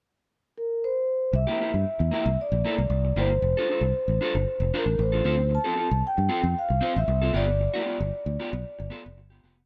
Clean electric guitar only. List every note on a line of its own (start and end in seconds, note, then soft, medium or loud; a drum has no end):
1.33 muted clean electric guitar stroke soft
1.47 1.59 A#3 medium
1.47 1.60 E4 medium
1.47 1.61 G4 medium
1.60 1.72 A#3 medium
1.60 1.73 E4 medium
1.60 1.72 G4 medium
1.74 muted clean electric guitar stroke soft
1.99 muted clean electric guitar stroke soft
2.11 2.27 A#3 medium
2.11 2.26 E4 medium
2.11 2.25 G4 medium
2.26 muted clean electric guitar stroke soft
2.53 muted clean electric guitar stroke medium
2.65 2.80 A#3 medium
2.65 2.78 E4 medium
2.65 2.78 A4 loud
2.78 muted clean electric guitar stroke soft
3.05 muted clean electric guitar stroke soft
3.16 3.32 A#3 medium
3.16 3.31 E4 medium
3.16 3.30 G4 medium
3.31 muted clean electric guitar stroke soft
3.43 muted clean electric guitar stroke soft
3.57 3.68 D4 medium
3.57 3.69 F4 medium
3.57 3.70 A4 medium
3.69 3.81 D4 medium
3.69 3.82 F4 medium
3.69 3.82 A4 medium
3.83 muted clean electric guitar stroke soft
4.09 muted clean electric guitar stroke soft
4.21 4.36 D4 medium
4.21 4.37 F4 medium
4.21 4.35 A4 loud
4.36 muted clean electric guitar stroke soft
4.62 muted clean electric guitar stroke medium
4.74 4.89 D4 medium
4.74 4.86 F4 loud
4.74 4.85 C5 medium
4.86 muted clean electric guitar stroke soft
4.98 muted clean electric guitar stroke soft
5.12 5.24 D4 soft
5.12 5.24 F4 medium
5.12 5.23 A4 medium
5.24 5.40 C4 medium
5.24 5.38 F4 medium
5.24 5.36 A4 loud
5.37 muted clean electric guitar stroke soft
5.49 muted clean electric guitar stroke soft
5.64 5.74 C4 medium
5.64 5.75 F4 medium
5.64 5.76 A4 medium
5.75 5.89 C4 medium
5.75 5.89 F4 medium
5.75 5.89 A4 medium
5.90 muted clean electric guitar stroke medium
6.17 muted clean electric guitar stroke soft
6.29 6.45 C4 medium
6.29 6.43 F4 medium
6.29 6.42 A4 loud
6.43 muted clean electric guitar stroke soft
6.69 muted clean electric guitar stroke soft
6.81 6.97 C4 loud
6.81 6.96 F4 medium
6.81 6.95 C5 loud
6.96 muted clean electric guitar stroke medium
7.08 muted clean electric guitar stroke soft
7.22 7.33 C4 medium
7.22 7.33 F4 medium
7.22 7.33 A4 medium
7.33 7.49 B3 medium
7.33 7.48 F4 medium
7.33 7.46 G4 loud
7.48 muted clean electric guitar stroke soft
7.60 muted clean electric guitar stroke soft
7.74 7.85 B3 medium
7.74 7.86 F4 medium
7.74 7.86 G4 medium
7.86 7.98 B3 medium
7.86 7.99 F4 medium
7.86 7.99 G4 medium
8.00 muted clean electric guitar stroke soft
8.27 muted clean electric guitar stroke soft
8.39 8.55 B3 medium
8.39 8.53 F4 medium
8.39 8.52 G4 medium
8.53 muted clean electric guitar stroke soft
8.79 muted clean electric guitar stroke medium
8.90 9.06 B3 medium
8.90 9.05 F4 medium
8.90 9.04 A4 loud
9.05 muted clean electric guitar stroke medium
9.18 muted clean electric guitar stroke medium
9.30 9.42 B3 medium
9.30 9.42 F4 medium
9.30 9.42 G4 medium
9.44 9.59 B3 medium
9.44 9.58 F4 medium
9.44 9.57 G4 loud
9.58 muted clean electric guitar stroke soft